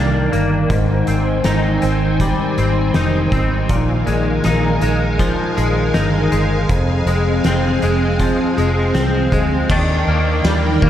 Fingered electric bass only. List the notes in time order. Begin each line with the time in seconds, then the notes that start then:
Already playing: C2
0.33 G1
0.70 G#1
1.08 G#1
1.45 G#1
1.83 G#1
2.58 G#1
2.95 F1
3.32 G#1
3.70 A#1
4.07 A#1
4.45 A#1
4.82 A#1
5.58 A#1
5.95 G1
6.32 G1
6.70 F1
7.06 F1
7.45 F1
7.83 F1
8.58 F1
8.95 C2
9.32 D2
9.70 D#2
10.07 D#2
10.45 D#2
10.83 D#2